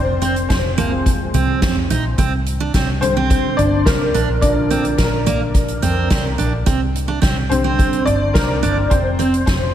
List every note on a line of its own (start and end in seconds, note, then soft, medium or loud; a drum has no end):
0.00 0.46 F1 medium
0.00 0.46 C4 medium
0.00 0.47 C5 medium
0.22 0.35 C4 medium
0.22 closed hi-hat medium
0.36 closed hi-hat soft
0.49 1.30 F1 medium
0.49 0.77 C4 medium
0.49 1.85 C5 medium
0.49 kick loud
0.49 snare loud
0.49 closed hi-hat medium
0.78 1.58 F3 medium
0.78 1.58 G#3 soft
0.78 0.91 A#3 medium
0.78 1.58 C4 medium
0.78 closed hi-hat medium
0.78 floor tom medium
1.06 kick loud
1.06 closed hi-hat medium
1.34 1.64 C2 medium
1.34 1.61 C4 medium
1.34 closed hi-hat medium
1.34 floor tom medium
1.62 1.88 F2 medium
1.62 1.75 C4 medium
1.62 kick loud
1.62 snare loud
1.62 closed hi-hat medium
1.76 floor tom medium
1.90 2.16 A#1 medium
1.90 2.04 D#4 medium
1.90 closed hi-hat medium
2.18 2.70 C2 loud
2.18 2.32 C4 medium
2.18 kick loud
2.18 closed hi-hat medium
2.46 closed hi-hat medium
2.60 2.74 D4 medium
2.74 3.54 C2 loud
2.74 2.88 C4 medium
2.74 kick loud
2.74 snare medium
2.74 closed hi-hat medium
3.01 4.10 D3 soft
3.01 4.10 G3 soft
3.01 3.55 C4 medium
3.01 3.54 C5 medium
3.01 closed hi-hat medium
3.01 floor tom medium
3.17 3.56 C4 medium
3.30 kick loud
3.30 closed hi-hat medium
3.57 3.84 G1 medium
3.57 3.85 D4 medium
3.57 3.86 D5 medium
3.57 closed hi-hat medium
3.57 floor tom medium
3.86 4.12 C2 medium
3.86 4.39 A#3 medium
3.86 4.38 A#4 medium
3.86 kick loud
3.86 snare loud
3.86 closed hi-hat medium
4.00 floor tom medium
4.14 4.95 A#1 medium
4.14 4.28 D4 medium
4.14 closed hi-hat medium
4.28 floor tom medium
4.41 5.22 D3 medium
4.41 5.22 F3 soft
4.41 4.98 A#3 medium
4.41 4.95 D4 medium
4.41 4.94 D5 medium
4.41 kick loud
4.41 closed hi-hat medium
4.70 4.84 C4 medium
4.70 closed hi-hat medium
4.85 closed hi-hat medium
4.98 5.79 A#1 loud
4.98 6.35 A#3 medium
4.98 6.34 A#4 medium
4.98 kick loud
4.98 snare medium
4.98 closed hi-hat medium
5.26 5.40 A#3 medium
5.26 closed hi-hat medium
5.26 floor tom medium
5.54 kick loud
5.54 closed hi-hat medium
5.68 closed hi-hat soft
5.82 6.09 F2 medium
5.82 6.09 C4 medium
5.82 closed hi-hat medium
5.82 floor tom medium
6.10 6.37 C2 medium
6.10 6.24 C4 medium
6.10 kick loud
6.10 snare loud
6.10 closed hi-hat medium
6.25 floor tom medium
6.38 6.65 A#1 medium
6.38 6.52 D4 medium
6.38 closed hi-hat medium
6.66 7.19 C2 medium
6.66 6.80 C4 medium
6.66 kick loud
6.66 closed hi-hat medium
6.95 closed hi-hat medium
7.08 7.21 D4 medium
7.22 8.03 C2 medium
7.22 7.35 C4 medium
7.22 kick loud
7.22 snare medium
7.22 closed hi-hat medium
7.50 7.88 D3 soft
7.50 7.88 G3 soft
7.50 8.03 C4 medium
7.50 8.02 C5 medium
7.50 closed hi-hat medium
7.50 floor tom medium
7.64 8.04 C4 medium
7.79 kick loud
7.79 closed hi-hat medium
7.93 closed hi-hat soft
8.06 8.33 G1 medium
8.06 8.33 D4 medium
8.06 8.35 D5 loud
8.06 closed hi-hat medium
8.06 floor tom medium
8.34 8.61 C2 medium
8.34 8.87 A#3 medium
8.34 8.87 A#4 medium
8.34 kick loud
8.34 snare loud
8.34 closed hi-hat medium
8.50 floor tom medium
8.63 8.89 G1 medium
8.63 8.76 D4 medium
8.63 closed hi-hat medium
8.90 9.43 F1 medium
8.90 9.44 C4 medium
8.90 9.45 C5 medium
8.90 kick loud
8.90 closed hi-hat medium
9.19 9.32 C4 medium
9.19 closed hi-hat medium
9.34 closed hi-hat medium
9.46 9.74 F1 medium
9.46 9.74 C4 medium
9.46 9.74 C5 medium
9.46 kick loud
9.46 snare medium
9.46 closed hi-hat medium